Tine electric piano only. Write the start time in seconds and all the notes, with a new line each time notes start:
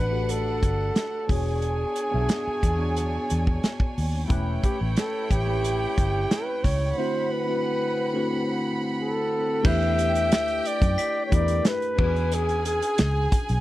Already playing: A3 D4 F#4 G4 B4
0.10 A3 D4 F#4 G4 A4
1.27 B3 D4 F#4 G#4 C#5
2.11 B3 D4 F#4 G4 E5
2.20 G#4
2.78 B3 D4 F#4 G#4 C#5
4.28 A3 C#4 E4 G4
4.32 B4
5.46 A3 C4 E4 G4 B4
5.53 C#4
6.97 D3 A3 C4 E4 F#4 C5
7.47 D3 A3 C4 E4 F#4 B4
8.13 D3 A3 C4 E4 F#4 B4
9.63 A3 D4 E4 G4 B4
11.29 A3 D4 E4 G4 A#4
11.40 B4
11.96 C#4 D4 F#4 G#4 B4